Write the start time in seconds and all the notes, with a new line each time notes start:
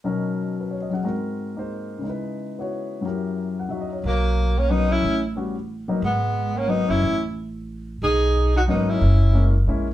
0.04 B2 F#3 C#4 D#4 A#4
0.61 B4
0.71 C#5
0.82 D#5
0.90 F#3 B3 C#4 G#4 F#5
1.04 G#2 G#3 C4 F#4 A#4
1.56 A#3 D#4 G#4 C5
1.98 C#3 G#3
2.04 D#4 E4
2.09 B4
2.59 B3 E4 F#4 C#5
3.01 F#2 F#3 E4 G4
3.06 A#4
3.59 F#5
3.69 F#3 D#4 F#4 E5
3.81 D#5
3.93 C#5
4.04 B1 F#3 A#3
4.58 A#3 C#4
4.69 F#3 A#3 B3 C#4 D#4
4.90 C#4 E4
5.03 A1
5.36 G3 B3 C#4 F#4
5.88 F#3 A#3 B3 D#4
6.02 G#1 G#3 B3
6.55 A#3 C#4
6.67 F#3 A#3 B3 D#4
6.88 F#1 C#4 E4
7.02 A1
8.02 B1 D#4 G#4
8.56 D#4 F#4
8.68 G#1 F#3 A#3 B3 C#4 D#4
8.89 C#4 E4
9.01 F#1
9.34 G#3 A#3 C#4 E4
9.67 A#1 G#3 A#3 C#4 E4